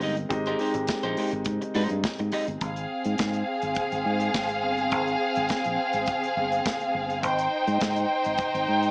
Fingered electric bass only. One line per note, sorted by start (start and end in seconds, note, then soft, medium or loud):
0.02 0.25 G1 medium
0.31 0.53 G#1 loud
0.75 0.85 G#1 medium
1.03 1.14 A#1 medium
1.33 1.43 G#1 medium
1.46 1.58 G#2 medium
1.76 1.87 G#2 loud
1.91 2.01 G2 medium
2.20 2.30 G#2 medium
2.48 2.58 G1 medium
2.61 2.84 G#1 medium
3.05 3.16 G#2 medium
3.19 3.42 G#2 medium
3.63 3.74 G#1 medium
3.92 4.03 G#1 medium
4.05 4.28 G#2 medium
4.34 4.63 G#1 medium
4.63 4.92 G1 medium
4.92 5.15 G#1 loud
5.37 5.48 G#1 medium
5.66 5.76 A#1 medium
5.94 6.05 G#1 medium
6.37 6.60 G1 medium
6.95 7.24 G1 medium
7.24 7.46 G#1 loud
7.67 7.78 G#2 medium
7.81 8.04 G#2 medium
8.26 8.36 G#1 medium
8.54 8.65 G#1 medium
8.68 8.91 G#2 medium